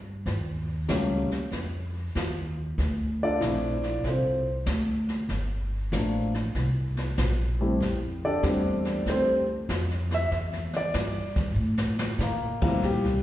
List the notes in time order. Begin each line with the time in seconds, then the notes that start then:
Already playing: G2
0.26 D#2, brush sweep, kick, snare
0.88 C#2 G3 A3 A#3 C#4, kick, snare, hi-hat pedal
1.30 muted upright bass stroke, snare
1.52 F2, brush sweep, kick, snare
2.15 D#2, kick, snare, hi-hat pedal
2.78 D2, brush sweep, kick, snare
3.23 D4 F4 A4 D5
3.40 A#1 F3 A3 C4 E4, kick, snare, hi-hat pedal
3.83 snare
4.04 C2 F4 A4 C5, brush sweep, kick, snare
4.08 C4
4.66 D2, kick, snare, hi-hat pedal
5.09 snare
5.29 G1, brush sweep, kick, snare
5.92 A1 F3 A3 A#3 D4, kick, snare, hi-hat pedal
6.34 snare
6.55 C2, brush sweep, kick, snare
6.97 snare
7.17 A#1, kick, snare, hi-hat pedal
7.61 G3 A3 C4 E4
7.80 F2, brush sweep, kick, snare
8.25 D4 G4 A4 D5
8.43 E2 G3 A3 C4 D4, kick, snare, hi-hat pedal
8.85 snare
9.06 D2 C4 G4 C5, brush sweep, kick, snare
9.10 A4
9.69 F2, kick, snare, hi-hat pedal
9.90 snare
10.11 E5, snare
10.31 E2, brush sweep, kick, snare
10.53 snare
10.73 D5, snare
10.94 G2, kick, snare, hi-hat pedal
11.36 kick, snare
11.56 A2
11.78 snare
11.99 snare
12.19 A#2, snare, hi-hat pedal
12.23 A#2 A#3
12.62 D2 A#2 F3 G3 A#3 C4 E4, kick, crash
12.82 D2 G3 G4, brush sweep, kick, snare
13.04 C2, snare